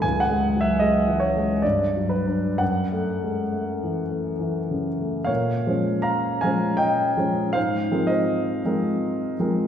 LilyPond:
<<
  \new Staff \with { instrumentName = "Grand piano" } { \time 3/4 \key cis \minor \tempo 4 = 77 gis''16 fis''8 e''16 dis''8 cis''8 d''8 b'8 | fis''2~ fis''8 r8 | \key bes \dorian <des'' f''>4 <f'' bes''>8 <f'' aes''>8 <ees'' g''>4 | <c'' f''>8. <c'' ees''>4.~ <c'' ees''>16 r8 | }
  \new Staff \with { instrumentName = "Grand piano" } { \clef bass \time 3/4 \key cis \minor \tuplet 3/2 { cis,8 gis8 fis8 gis8 e8 gis8 g,8 fis8 <d' b'>8 } | \tuplet 3/2 { fis,8 a8 gis8 a8 e8 a8 e8 cis8 a8 } | \key bes \dorian bes,8 <f aes des' c''>4 <f aes des' c''>4 <f aes des' c''>8 | aes,8 <f aes c' bes'>4 <f aes c' bes'>4 <f aes c' bes'>8 | }
>>